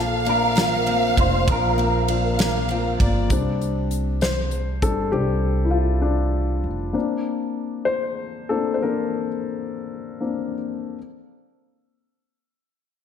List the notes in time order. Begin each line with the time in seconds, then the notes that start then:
Already playing: A#1 F3 A#3 C4 F4 A4 F5
0.25 A#3 D4, ride
0.29 A#4
0.55 F3 F4, snare, ride
0.87 A#3 C4, ride
1.17 F1 D4 F4 C5, kick, ride
1.48 A#1 F3 A#4, kick, ride
1.78 A#3 C4, ride
2.08 D4 F4 F5, ride
2.39 F3 A#3, snare, ride
2.69 C4 F4, ride
3.00 G1 A#3 D4 D5, kick, ride
3.30 C2 G3 C4 D4, kick, closed hi-hat
3.61 closed hi-hat
3.91 closed hi-hat
4.21 C5, snare, closed hi-hat
4.51 closed hi-hat
4.82 G1 G3 C4 D4 A4, kick, closed hi-hat
5.12 C2 G3 C4 D4 G4
5.65 E4
5.71 F4
6.02 D4
6.64 F1
6.93 A#3 C4 D4
7.85 C5
8.49 A#3 C4 D4 A4
8.74 C5
8.82 A#3 C4 D4 A#4
10.20 A#3 C4 D4